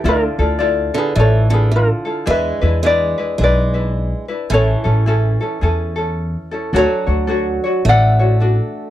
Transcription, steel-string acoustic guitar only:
X:1
M:4/4
L:1/8
Q:"Swing" 1/4=108
K:A
V:1 name="Steel-string acoustic guitar" clef=bass
D,3 D, E, D, D,2 | G,2 G,2 G,3 z | E,4 z4 | [K:D] F,4 A,4 |]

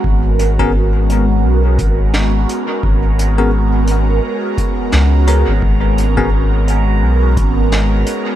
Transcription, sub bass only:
X:1
M:4/4
L:1/16
Q:"Swing 16ths" 1/4=86
K:G#m
V:1 name="Sub bass" clef=bass
G,,,8 B,,,2 G,,,4 z2 | G,,,8 z4 C,,3 G,,, | G,,,8 B,,,2 G,,,4 z2 |]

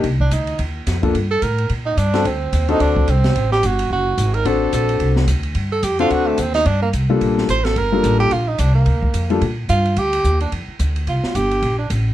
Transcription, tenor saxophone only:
X:1
M:4/4
L:1/8
Q:"Swing" 1/4=218
K:Gm
V:1 name="Tenor saxophone"
z D E2 z4 | z A B2 z E D2 | C3 E D2 C2- | C G ^F2 F3 B |
A2 A3 z3 | z A G F ^F A, C E | D B, z4 c A | B3 G F E D B,- |
B,4 z2 F2 | G3 D z4 | F2 G3 D z2 |]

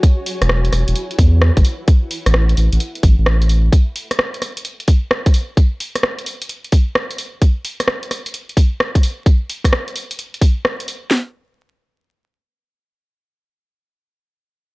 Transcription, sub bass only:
X:1
M:4/4
L:1/16
Q:"Swing 16ths" 1/4=130
K:Alyd
V:1 name="Sub bass" clef=bass
z3 E,,,3 E,,, E,,, z2 E,,3 G,,, z2 | z3 A,,,3 A,,, A,,, z2 A,,, A,,,4- A,,, | z16 | z16 |
z16 | z16 | z16 | z16 |]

